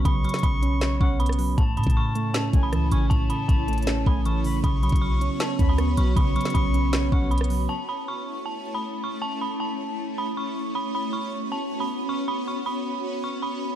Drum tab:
HH |x-----------x--x--x--x--x-----------x-----------x-----------------------x---x---x---o-----------|x-----------x---x---x---------------x-----------x-----------x-----------x-----------x-----------|x-----------x-----------x-----------x--x--x--x--x-----------------------x-----------o-----------|x-----------x---x---x---------------x-----------x-----------x-----------x-----------x-----------|
CP |------------------------------------------------x-----------------------------------------------|------------------------------------------------x-----------------------------------------------|------------------------------------------------x-----------------------------------------------|------------------------------------------------x-----------------------------------------------|
SD |------------------o-----------------------------o-----------------------------r-----------------|------------------------------------------------o-----------------------r-----------------------|------------------------------------------------o-----------------------------------------------|------------------------------------------------o-----------------------r-----------------------|
BD |o-----------------------o-----------------------------------o-----------------------------------|o-----------------o-----------------------------------------o-----------------------------------|o-----------------------o-----------------------------------o-----------------------------------|o-----------------o-----------------------------------------o-----------------------------------|

HH |x-----------x--x--x--x--x-----------x-----------x-----------------------x---x---x---o-----------|------------------------------------------------------------------------------------------------|------------------------------------------------------------------------------------------------|------------------------------------------------------------------------------------------------|
CP |------------------------------------------------x-----------------------------------------------|------------------------------------------------------------------------------------------------|------------------------------------------------------------------------------------------------|------------------------------------------------------------------------------------------------|
SD |------------------o-----------------------------o-----------------------------r-----------------|------------------------------------------------------------------------------------------------|------------------------------------------------------------------------------------------------|------------------------------------------------------------------------------------------------|
BD |o-----------------------o-----------------------------------o-----------------------------------|------------------------------------------------------------------------------------------------|------------------------------------------------------------------------------------------------|------------------------------------------------------------------------------------------------|

HH |------------------------------------------------------------------------------------------------|
CP |------------------------------------------------------------------------------------------------|
SD |------------------------------------------------------------------------------------------------|
BD |------------------------------------------------------------------------------------------------|